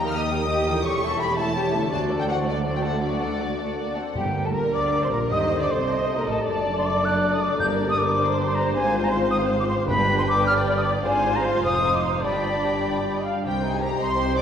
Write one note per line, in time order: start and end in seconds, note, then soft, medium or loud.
0.00 0.81 D#2 medium
0.00 0.77 D#3 soft
0.00 0.16 G3 soft
0.00 0.79 A#3 soft
0.00 0.16 D#4 soft
0.00 0.82 D#4 soft
0.00 0.79 G4 soft
0.00 0.15 A#4 medium
0.00 0.15 G5 soft
0.07 0.16 F6 medium
0.14 0.33 A#3 soft
0.14 0.32 G4 soft
0.14 0.33 G4 soft
0.14 0.32 D#5 soft
0.14 0.84 D#6 medium
0.31 0.50 G3 medium
0.31 0.50 D#4 soft
0.31 0.49 A#4 medium
0.31 0.50 G5 medium
0.49 0.66 A#3 soft
0.49 0.66 G4 medium
0.49 0.66 G4 soft
0.49 0.66 D#5 soft
0.66 1.84 E3 medium
0.66 0.84 G3 soft
0.66 0.85 D#4 medium
0.66 0.85 A#4 soft
0.66 0.85 G5 medium
0.71 1.77 A3 soft
0.76 1.89 C#4 soft
0.80 1.91 G4 soft
0.84 1.92 E1 medium
0.84 1.92 E2 medium
0.84 1.02 G3 medium
0.84 1.01 G4 medium
0.84 1.01 G4 soft
0.84 1.02 C#5 medium
0.84 1.20 C#6 medium
1.02 1.20 A3 soft
1.02 1.20 E4 medium
1.02 1.20 A4 medium
1.02 1.20 E5 soft
1.19 1.38 G3 soft
1.19 1.38 G4 medium
1.19 1.38 G4 soft
1.19 1.38 C#5 medium
1.19 1.37 B5 medium
1.36 1.55 A3 medium
1.36 1.55 E4 medium
1.36 1.55 A4 soft
1.36 1.55 E5 medium
1.36 1.91 A5 medium
1.55 1.73 G3 medium
1.55 1.72 G4 soft
1.55 1.73 G4 soft
1.55 1.72 C#5 medium
1.73 2.83 D3 medium
1.73 1.92 A3 soft
1.73 1.92 E4 medium
1.73 1.92 A4 soft
1.73 1.92 E5 soft
1.78 2.87 A3 soft
1.82 2.99 C4 soft
1.87 3.96 D2 medium
1.87 2.43 D3 medium
1.87 2.08 F#3 soft
1.87 2.97 F#4 soft
1.87 2.08 F#4 medium
1.87 2.08 C5 soft
1.87 2.08 D5 soft
1.93 3.97 D2 medium
1.93 2.00 A5 medium
2.10 2.28 A3 soft
2.10 2.28 D4 soft
2.10 2.28 A4 soft
2.10 2.27 D5 soft
2.20 2.23 G5 medium
2.27 2.46 F#3 soft
2.27 2.47 F#4 soft
2.27 2.47 C5 soft
2.27 2.46 D5 soft
2.27 2.36 F#5 medium
2.45 2.65 A3 soft
2.45 2.65 D4 soft
2.45 2.66 A4 soft
2.45 2.64 D5 soft
2.45 2.56 D5 medium
2.65 2.83 F#3 soft
2.65 2.82 F#4 soft
2.65 2.83 C5 soft
2.65 2.82 D5 soft
2.76 2.80 G5 medium
2.83 4.08 D3 soft
2.83 3.02 A3 soft
2.83 3.02 D4 soft
2.83 3.02 A4 soft
2.83 3.00 D5 soft
2.83 3.02 F#5 soft
2.89 4.11 A3 soft
2.93 4.33 D4 soft
2.98 4.15 F#4 soft
2.98 3.20 D5 soft
3.02 3.20 F#3 soft
3.02 3.20 F#4 soft
3.02 3.94 D5 medium
3.20 3.41 A3 soft
3.20 3.40 D4 soft
3.20 3.40 A4 soft
3.20 3.40 F#5 soft
3.40 3.59 F#3 soft
3.40 3.59 F#4 soft
3.40 3.59 D5 soft
3.59 3.66 A3 soft
3.59 3.78 A4 soft
3.59 3.78 F#5 soft
3.77 3.96 A#3 soft
3.77 3.95 F#4 soft
3.77 3.95 D5 soft
3.96 4.16 C4 soft
3.96 4.16 A4 soft
3.96 4.16 F#5 soft
4.15 4.43 G1 medium
4.15 4.70 G2 medium
4.15 5.29 G2 soft
4.15 4.44 G2 medium
4.15 4.23 G4 medium
4.15 4.43 G4 medium
4.15 5.28 A#4 medium
4.15 4.47 G5 medium
4.25 5.20 A#3 soft
4.34 5.10 D4 soft
4.44 4.56 A2 medium
4.44 5.01 G4 soft
4.44 4.48 A4 soft
4.44 4.55 A4 medium
4.44 4.53 A5 medium
4.54 4.74 A#1 medium
4.54 4.75 A#2 soft
4.54 4.73 A#4 medium
4.54 4.74 A#4 medium
4.54 4.91 A#4 soft
4.54 4.60 A#5 medium
4.64 4.82 D5 soft
4.73 5.03 D2 medium
4.73 5.03 D3 medium
4.73 4.82 D5 medium
4.73 5.03 D5 medium
4.73 6.48 G5 soft
4.73 5.02 D6 medium
4.83 5.33 D5 soft
4.93 5.33 A#4 soft
5.02 5.13 C3 medium
5.02 6.47 G4 soft
5.02 5.06 C5 medium
5.02 5.13 C5 soft
5.02 5.08 C6 medium
5.11 5.31 A#1 medium
5.11 5.32 A#2 medium
5.11 5.32 D4 soft
5.11 5.32 A#4 medium
5.11 5.31 A#4 medium
5.11 5.19 A#5 medium
5.21 5.33 A#3 soft
5.30 5.60 D#2 medium
5.30 6.47 G2 medium
5.30 5.85 G2 medium
5.30 5.60 D#3 medium
5.30 5.90 C5 medium
5.30 5.59 D#5 medium
5.30 5.60 D#5 medium
5.30 5.39 D#6 medium
5.40 6.26 A3 soft
5.49 5.68 D#4 soft
5.59 5.70 D3 soft
5.59 6.06 A4 soft
5.59 5.64 D5 medium
5.59 5.70 D5 soft
5.59 5.73 D6 medium
5.69 6.18 C2 medium
5.69 6.18 C3 medium
5.69 6.15 D#4 soft
5.69 6.16 C5 medium
5.69 6.18 C5 medium
5.69 6.18 C6 medium
5.79 5.95 D#5 soft
5.88 6.46 D#5 medium
5.88 7.01 A5 soft
5.97 6.47 D#5 soft
6.07 6.72 A4 soft
6.16 6.27 A#2 medium
6.16 6.47 D#4 soft
6.16 6.21 A#4 medium
6.16 6.27 A#4 soft
6.16 6.23 A#5 medium
6.25 6.35 A1 medium
6.25 6.35 A2 medium
6.25 6.54 A3 soft
6.25 6.45 A4 medium
6.25 6.47 A5 medium
6.36 6.47 G3 soft
6.45 7.56 F#1 medium
6.45 7.61 F#2 medium
6.45 7.56 F#2 medium
6.45 8.70 D4 medium
6.45 7.56 A4 medium
6.45 8.69 D5 medium
6.45 7.57 D5 medium
6.45 6.75 A5 medium
6.55 7.40 A3 soft
6.64 6.82 D4 soft
6.73 7.21 A4 soft
6.78 6.87 C6 medium
6.83 7.31 D4 soft
6.83 7.06 D6 medium
6.93 7.11 D5 soft
7.02 7.61 A5 medium
7.02 7.34 F#6 medium
7.13 8.04 D5 soft
7.22 7.61 A4 soft
7.32 7.76 D4 soft
7.32 7.43 D#6 medium
7.41 7.61 A3 soft
7.41 7.59 D6 medium
7.51 7.61 F#3 soft
7.59 8.71 G1 medium
7.59 8.12 G2 medium
7.59 8.71 G2 medium
7.59 8.75 G2 medium
7.59 8.70 A#4 medium
7.59 8.15 A#4 medium
7.59 7.66 G6 medium
7.68 8.61 A#3 soft
7.78 8.52 D4 soft
7.86 8.43 G4 soft
7.86 8.00 D#6 medium
7.96 8.33 A#4 medium
7.96 8.45 D6 medium
8.06 8.24 D5 medium
8.15 9.85 C5 medium
8.15 8.75 G5 medium
8.25 8.75 D5 medium
8.34 8.75 A#4 soft
8.44 8.75 G4 soft
8.44 8.57 C6 medium
8.53 8.74 D4 medium
8.53 8.74 A#5 medium
8.63 8.74 A#3 soft
8.72 9.88 G#1 medium
8.72 9.89 G#2 medium
8.72 9.85 C4 medium
8.72 9.85 C5 medium
8.72 9.84 F5 medium
8.72 9.05 G#5 medium
8.82 9.68 C4 soft
8.92 9.09 F4 medium
9.01 9.48 C5 medium
9.01 9.11 A#5 medium
9.10 9.58 F4 medium
9.10 9.18 C6 medium
9.20 9.38 F5 medium
9.30 9.90 C6 medium
9.30 9.37 D#6 medium
9.40 9.90 F5 medium
9.50 9.90 C5 medium
9.59 9.90 F4 soft
9.59 9.64 D6 medium
9.69 9.90 C4 medium
9.69 9.75 C6 medium
9.79 9.90 G#3 medium
9.88 11.02 G1 medium
9.88 10.42 G2 medium
9.88 11.06 G2 medium
9.88 11.03 G2 medium
9.88 11.01 D4 medium
9.88 11.01 B4 medium
9.88 10.45 B4 medium
9.88 11.01 G5 medium
9.88 10.17 B5 loud
9.98 10.94 D4 medium
10.09 10.84 G4 medium
10.17 10.74 B4 medium
10.17 10.23 C6 medium
10.28 10.47 D6 loud
10.38 10.56 G5 medium
10.45 11.04 D5 medium
10.45 10.53 F6 medium
10.57 11.07 G5 medium
10.66 11.07 D5 medium
10.76 11.07 B4 medium
10.76 10.81 D#6 medium
10.84 11.07 G4 medium
10.84 10.90 D6 medium
10.95 11.07 D4 medium
11.04 11.60 G#1 medium
11.04 12.25 G#2 medium
11.04 11.61 G#2 medium
11.04 11.80 F4 medium
11.04 12.20 C5 medium
11.04 11.63 C5 medium
11.04 12.20 F5 medium
11.04 11.37 G#5 medium
11.15 12.03 C4 soft
11.24 11.43 F4 soft
11.34 11.83 C5 soft
11.34 11.47 A#5 medium
11.44 11.93 F4 medium
11.44 11.64 C6 medium
11.54 11.74 F5 medium
11.64 12.24 F1 medium
11.64 12.24 F2 medium
11.64 12.23 C5 medium
11.64 12.26 C6 medium
11.64 11.97 D#6 medium
11.84 12.24 D#4 medium
11.84 12.26 C5 soft
11.94 12.26 F4 soft
11.94 12.04 D6 medium
12.04 12.26 C4 soft
12.04 12.10 C6 medium
12.14 12.26 G#3 soft
12.23 13.25 G1 medium
12.23 13.26 G2 medium
12.23 13.47 G2 medium
12.23 13.25 D4 medium
12.23 13.24 D5 soft
12.23 12.81 D5 medium
12.23 13.26 G5 medium
12.23 13.24 B5 medium
12.35 13.33 G3 soft
12.44 13.23 D4 soft
12.53 12.72 D5 soft
12.63 13.02 G4 soft
12.73 12.92 D5 soft
12.83 13.13 D5 medium
12.83 13.46 D6 soft
12.93 13.13 D5 soft
13.03 13.89 G4 soft
13.14 13.46 D5 soft
13.14 13.26 D#5 medium
13.24 13.46 D4 soft
13.24 13.44 F5 medium
13.34 13.61 G3 soft
13.44 13.93 C2 medium
13.44 13.94 C2 medium
13.44 14.42 C3 medium
13.44 13.62 C4 soft
13.44 13.52 G4 medium
13.44 13.62 G4 soft
13.44 13.71 G5 medium
13.54 14.42 C4 soft
13.62 14.42 G3 soft
13.62 13.81 D#4 soft
13.62 13.81 C5 soft
13.73 14.42 D#4 soft
13.73 13.82 G#4 medium
13.73 13.82 G#5 medium
13.80 13.99 C4 soft
13.80 13.99 G4 soft
13.80 13.89 A#4 medium
13.80 14.33 C5 soft
13.80 14.00 A#5 medium
13.90 14.24 G4 medium
13.98 14.42 C2 medium
13.98 14.18 D#4 soft
13.98 14.18 C5 medium
13.98 14.36 C5 medium
13.98 14.16 D#5 soft
13.98 14.37 C6 medium
14.17 14.34 C4 soft
14.17 14.34 G4 soft
14.17 14.42 D#5 soft
14.25 14.42 G4 soft
14.35 14.42 D#4 soft
14.35 14.42 C5 medium
14.35 14.42 C5 soft
14.35 14.42 D5 medium
14.35 14.42 D6 medium